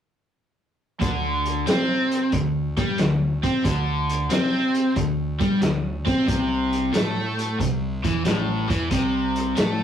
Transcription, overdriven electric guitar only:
1.01 D3
1.67 C4
2.33 D3
2.78 G3
2.99 D3
3.44 C4
3.64 D3
4.31 C4
4.96 D3
5.40 G3
5.61 D3
6.06 C4
6.27 C3
6.93 A3
7.59 C3
8.04 E3
8.25 A2
8.69 E3
8.90 C3
9.57 A3

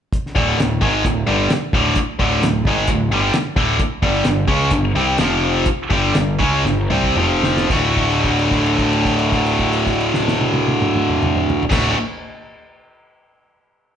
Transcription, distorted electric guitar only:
0.35 D2 A2 D3
0.59 D2 A2
0.81 G#2 D#3 G#3
1.05 D2 A2
1.27 G2 D3 G3
1.51 muted distorted electric guitar stroke
1.74 D2 A2 D3
2.19 D2 A2 D3
2.43 D2 A2
2.67 G#2 D#3 G#3
2.89 D2 A2
3.12 G2 D3 G3
3.34 muted distorted electric guitar stroke
3.56 D2 A2 D3
4.02 G2 D3 G3
4.26 G2 D3
4.48 C#3 G#3 C#4
4.72 G2 D3
4.95 C3 G3 C4
5.18 F2 C3 F3
5.90 G2 D3 G3
6.14 G2 D3
6.39 C#3 G#3 C#4
6.65 G2 D3
6.90 C3 G3 C4
7.17 F2 C3 F3
7.69 D2 A2 D3 A3
7.73 F#4
11.70 D2 A2 D3 A3 F#4

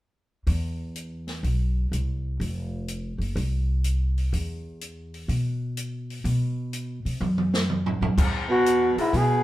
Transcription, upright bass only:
0.47 E2
1.43 B1
1.92 C2
2.40 F1
3.18 F#1
3.36 C2
4.33 E2
5.28 B2
6.24 B2
7.05 C3
7.21 F#2
8.01 F#2
8.18 E2
8.96 muted upright bass stroke
9.13 B2

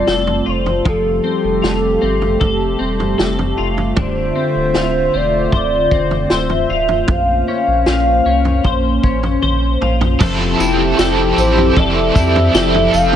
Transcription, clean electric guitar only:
Already playing: F3 C4 F4
0.08 A4
0.46 F4
0.85 F3
1.24 C4
1.62 F4
2.02 C4
2.41 A4
2.79 C4
3.18 A4
3.58 F4
3.97 D3
4.36 C4
4.75 F4
5.14 C4
5.53 C5
5.92 C4
6.31 C5
6.70 F4
7.48 C#4
7.87 F4
8.26 C#4
8.65 C5
9.04 C#4
9.42 C5
9.81 F4
10.20 F3 A4
10.60 E4
10.99 A4
11.38 E4
11.77 A4
12.16 E4
12.55 A4

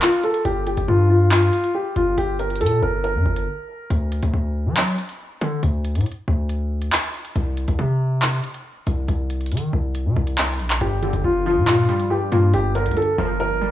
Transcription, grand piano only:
0.02 F4
0.24 A4
0.45 G4
0.67 G4
0.88 F4
1.10 F4
1.31 F4
1.75 G4
1.96 F4
2.18 G4
2.39 A#4
2.61 A4
2.82 A#4
3.04 A#4
10.81 G4
11.03 G4
11.25 F4
11.46 F4
11.67 F4
12.11 G4
12.32 F4
12.54 G4
12.75 A#4
12.97 A4
13.18 A#4
13.40 A#4

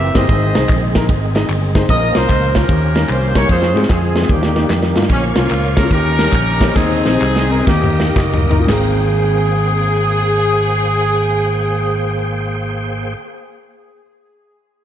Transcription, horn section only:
Already playing: E4 G4 A#4 E5
0.16 G#4 C5 D#5
1.90 A#4 D#5
2.16 F4 C5
2.56 C#4 G4 A#4
3.10 C5
3.36 C#5
3.50 F4 G#4 C5
3.90 C4 F4 G#4
4.31 A#3 D#4 G4
5.11 F3 A#3 C#4
5.37 A#3 C#4 F4
5.77 A#4
5.92 C#4 G4 A#4
6.75 C4 D#4 G#4
7.66 A#3 D#4 G4
8.68 G#4

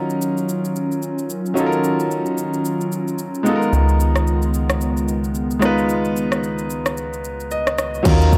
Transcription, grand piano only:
Already playing: F#3 C#4 D#4 F4 A#4
1.54 F#3 C#4 D#4
1.58 F4 A4
1.66 A#4
3.43 G#3 B3 D#4
3.48 F4 A4
3.56 A#4
5.59 G#3 B3 D#4
5.64 F4 B4
7.51 D#5
8.03 F#3 C#4 D#4
8.07 F4 A#4

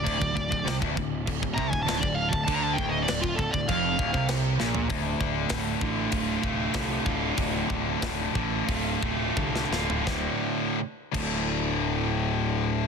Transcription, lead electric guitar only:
Already playing: D5
1.54 A#5
1.70 G#5
1.83 A5
1.98 D5
2.15 F5
2.29 A5
2.45 A5
2.56 A#5
2.64 A5
2.73 G5
2.89 D#5
3.03 D5
3.21 F4
3.35 A4
3.51 D5
3.68 F5

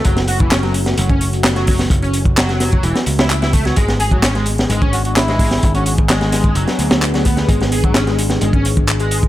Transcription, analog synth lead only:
0.05 F#3
0.28 F#4
0.40 E3
0.51 C#4
0.63 F#3
0.98 F#3
1.10 C#4
1.56 F#3
1.67 F#3
2.02 C#4
2.37 F#3
2.84 E3
3.19 E4
3.42 E4
3.53 A3
3.65 F#3
3.77 G#3
4.00 G#4
4.12 F#3
4.23 C#4
4.35 G#3
4.70 G#3
4.82 C#4
5.28 G#3
5.40 G#3
5.75 C#4
6.10 G#3
6.56 F#3
7.14 F#3
7.26 B3
7.49 G#3
7.72 G#4
7.84 F#3
7.95 C#4
8.07 G#3
8.42 G#3
8.54 C#4
9.00 G#3
9.12 G#3

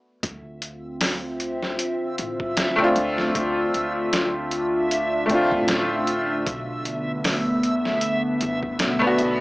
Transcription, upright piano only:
Already playing: A3 B3 D4 F#4
2.76 A3 C4
2.81 D4 F4
5.26 A3 C4
5.31 D4 F4
8.99 A3 B3
9.04 D4 F#4

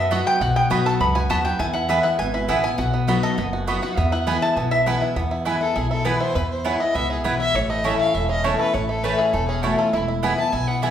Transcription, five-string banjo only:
Already playing: B3 A4
0.11 F#4
0.26 B3
0.41 F#4
0.56 B3
0.71 F#4
0.86 A4
1.01 B3
1.15 F#4
1.30 B3
1.45 F#4
1.60 E4
1.75 E4
1.89 B3
2.04 E4
2.19 E3
2.34 E4
2.49 B3
2.64 E4
2.79 F#4
2.94 B3
3.08 F#4
3.23 A4
3.38 B3
3.53 F#4
3.68 B3
3.83 F#4
3.97 B3
4.12 E4
4.27 B3
4.42 E4
4.57 B3
4.72 E4
4.87 B3
5.01 E4
5.16 B3
5.31 E4
5.46 E4
5.61 E4
5.76 E4
5.91 E4
6.05 B3
6.20 E4
6.35 E4
6.65 E4
6.80 E4
6.95 B3
7.10 E4
7.25 E4
7.40 E4
7.55 E4
7.70 A3
7.84 C#4
7.99 E4
8.15 A3
8.29 C#4
8.44 E4
8.59 A4
8.74 E4
8.89 A3
9.04 C#4
9.19 E4
9.34 A3
9.49 C#4
9.63 E4
9.79 A4
9.93 E4
10.08 E4
10.23 B3
10.38 E4
10.53 E4
10.68 B3
10.83 E4

